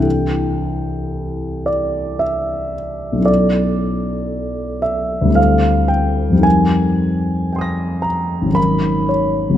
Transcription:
grand piano
Already playing: C2 E3 D4 G5
0.00 E4 A4
1.66 D5
2.19 E5
3.12 B1 F#3
3.18 C#4 E4
3.24 A4 D5
4.82 E5
5.21 D2 G3
5.27 C4 E4
5.33 A4 F5
5.88 G5
6.30 F2 G3
6.36 C4 D#4
6.41 A#4 G#5
7.53 G5 C6
7.59 D#6 A#6
8.02 A#5
8.42 G#1 F#3
8.48 C#4 D#4
8.53 A#4 B5
9.09 C#5
9.50 G1 G3

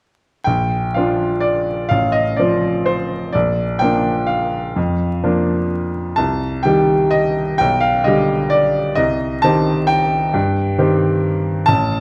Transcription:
grand piano
0.44 A#1 G5
0.94 F3 D4 F4 F5
1.40 D5
1.89 A1 F5
2.12 D#5
2.36 F3 C4 F4 D5
2.86 C5
3.33 A#1 D5
3.79 F3 A#3 D4 G5
4.26 F5
4.76 F2
5.23 F3 A#3 D4
6.16 C2 A5
6.63 D#3 G3 G4 G5
7.11 D#5
7.58 B1 G5
7.80 F5
8.04 D3 G3 G4 D#5
8.50 D5
8.95 C2 D#5
9.42 D#3 C4 G4 A5
9.87 G5
10.34 G2
10.78 D#3 C4 G4
11.66 A1 A5

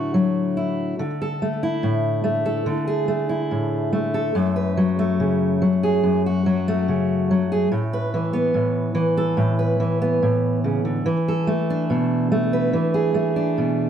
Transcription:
steel-string acoustic guitar
Already playing: A2 D3 F#3 A3 E4 F#4
0.14 F#3
0.57 E4
0.99 D3
1.22 A4
1.42 A3
1.63 E4
1.83 A2
2.24 A3
2.46 A4
2.66 D3
2.87 G#4
3.08 A3
3.29 E4
3.51 A2
3.93 A3
4.14 A4
4.35 F#2
4.56 B4
4.77 F#3
4.99 A3
5.20 C#3
5.62 F#3
5.83 G#4
6.03 F#2
6.26 F#4
6.46 F#3
6.68 A3
6.88 C#3
7.31 F#3
7.52 G#4
7.72 A2
7.93 B4
8.14 E3
8.33 B3
8.54 A2
8.95 E3
9.17 A4
9.37 A2
9.59 B4
9.80 E3
10.02 B3
10.22 A2
10.64 C#3
10.85 D3
11.06 E3
11.28 A4
11.47 A3
11.70 D4
11.90 B2
12.32 A3
12.53 B4
12.73 E3
12.94 G#4
13.14 A3
13.36 D4
13.58 B2

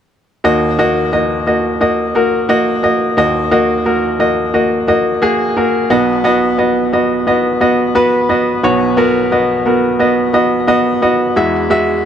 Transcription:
grand piano
0.44 D#2 D#3 A#3 F#4 D#5
0.79 A#3 F#4 D#5
1.12 A#3 F#4 D#5
1.47 A#3 F#4 D#5
1.81 A#3 F#4 D#5
2.15 A#3 F#4 A#4
2.49 A#3 F#4 D#5
2.83 A#3 F#4 D#5
3.17 D#2 D#3 A#3 F#4 D#5
3.51 A#3 F#4 D#5
3.85 A#3 F#4 A#4
4.19 A#3 F#4 D#5
4.54 A#3 F#4 D#5
4.88 A#3 F#4 D#5
5.22 A#3 F#4 G#4
5.56 A#3 F#4 A#4
5.90 B1 B2 B3 F#4 D#5
6.24 B3 F#4 D#5
6.58 B3 F#4 D#5
6.93 B3 F#4 D#5
7.27 B3 F#4 D#5
7.61 B3 F#4 D#5
7.95 B3 F#4 B4
8.29 B3 F#4 D#5
8.63 B1 B2 B3 F#4 C#5
8.97 B3 F#4 A#4
9.32 B3 F#4 D#5
9.66 B3 F#4 A#4
9.99 B3 F#4 D#5
10.33 B3 F#4 D#5
10.67 B3 F#4 D#5
11.02 B3 F#4 D#5
11.36 E2 E3 G#3 F#4 E5
11.70 G#3 F#4 E5

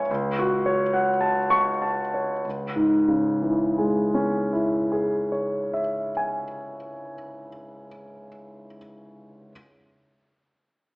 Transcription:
grand piano
Already playing: C#2 E4 C#5 E5 G#5 C#6
0.10 C#2
0.39 F#4
0.66 C#5
0.93 F#5
1.21 A5
1.50 C#6
1.82 A5
2.14 C#5
2.44 C#2
2.76 G#2
3.08 C#3
3.42 E3
3.78 G#3
4.14 C#4
4.53 E4
4.92 G#4
5.32 C#5
5.74 E5
6.17 G#5

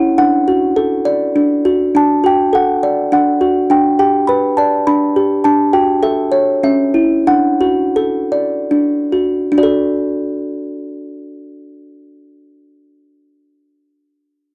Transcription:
music box
Already playing: C#4 E4 A4 C#5 F#5
0.18 D4 F#5
0.48 F#4
0.76 A4
1.05 D5
1.36 D4
1.65 F#4
1.95 D4 A5
2.24 F#4 G5
2.53 A4 F#5
2.83 D5
3.12 D4 F#5
3.41 F#4
3.70 D4 G5
3.99 G4 G5
4.27 B4 B5
4.57 D5 A5
4.87 D4 B5
5.16 G4
5.44 D4 A5
5.73 F#4 G5
6.03 A4 E5
6.32 C#5
6.63 C#4 E5
6.94 E4
7.27 D4 F#5
7.61 F#4
7.96 A4
8.32 D5
8.71 D4
9.12 F#4
9.52 D4
9.58 F#4 D5
9.63 A4

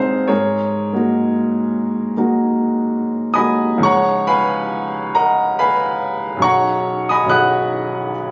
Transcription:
grand piano
Already playing: G#3 C4 D#4 G#4 C5 F5 F#5
0.28 G#2 G#4 A#4 C#5
0.93 G#3 A#3 D#4 F#4
2.17 G#3 A#3 D#4 F#4
3.34 G#3 A#3 D#4 F#4 D#5 G#5 B5 D#6
3.78 C#2 F3 C#4
3.82 D#4 G#4 C#5 F#5 A#5 C#6
4.27 B4 F5 G#5 B5
5.15 A#4 D#5 F#5 A#5
5.59 B4 F5 G#5 B5
6.37 B1 F#3 C#4
6.41 D#4 G#4 C#5 F#5 A#5 C#6
7.09 D#5 G#5 B5 D#6
7.24 B1 F#3 C#4
7.28 D#4 G#4 F#5 B5 D#6 F#6

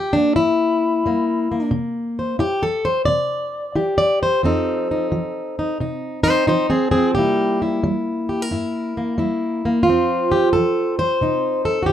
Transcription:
steel-string acoustic guitar
Already playing: G3 G4
0.13 A#3 D4
0.36 G2 E4
1.06 G3 A#3
1.52 A#3
1.71 C3
2.19 C5
2.39 E4 G4
2.63 A4
2.85 C5
3.05 C3 D5
3.75 E4 G4
3.98 D5
4.23 C5
4.43 F2 F3 C4 D#4 A4
4.91 D#4
5.12 F3
5.59 D#4
5.80 C3 D#4
6.23 C4 D#4 C5
6.47 F3 D#4 C5
6.70 C4 G#4
6.91 C4 G#4
6.96 F3
7.15 C3 G3 A#3 E4 G4
7.62 E4
7.84 G3
8.29 G4
8.42 A#4
8.51 G2 E4
8.97 A#3
9.18 G3 E4
9.65 A#3
9.83 F4
9.87 F2 F3 C4
10.32 G4
10.53 F3 A4
10.99 C5
11.21 C3 D#4
11.65 A4
11.83 F#4 G4

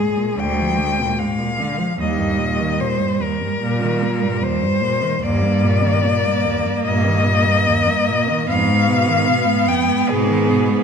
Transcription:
cello
Already playing: G#2 G#3 G#4
0.17 A#2
0.38 D2 D3 G5
0.60 F3
0.79 D3
1.00 A#2
1.19 G#2 F5
1.39 A#2
1.60 D3
1.79 F3
1.99 D#2 G3 D#5
2.19 G2
2.39 A#2
2.59 D#3
2.80 A#2 C5
3.00 G2
3.21 D#2 A#4
3.42 G2
3.62 A#2
3.82 D#3
4.03 A#2
4.23 G2
4.43 D#2 C5
4.63 G2
4.82 A#2
5.01 D#3
5.21 D#2 G2 A#3 D5
5.43 G2
5.64 A#2
5.84 D#3
6.06 A#2
6.27 G2
6.47 D#2
6.66 G2
6.85 G2 A#2 D#5
7.07 D#3
7.26 A#2
7.47 G2
7.68 D#2
7.89 G2
8.09 A#2
8.29 D#3
8.48 F2 G#2 B3 F5
8.68 G#2
8.88 B2
9.07 D#3
9.27 B2
9.46 G#2
9.67 F2 G5
9.88 G#2
10.09 G#2 B2 G#4
10.28 D#3
10.50 B2
10.69 G#2

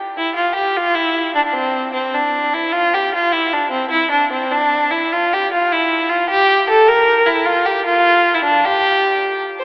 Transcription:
fiddle
0.17 E4
0.35 F4
0.55 G4
0.77 F4
0.95 E4
1.35 D4
1.45 D4
1.53 C4
1.93 C4
2.14 D4
2.54 E4
2.72 F4
2.94 G4
3.14 F4
3.33 E4
3.53 D4
3.70 C4
3.90 E4
4.10 D4
4.31 C4
4.52 D4
4.91 E4
5.13 F4
5.33 G4
5.53 F4
5.72 E4
6.09 F4
6.29 G4
6.69 A4
6.88 A#4
7.26 E4
7.45 F4
7.66 G4
7.85 F4
8.34 E4
8.44 D4
8.65 G4
9.59 C5

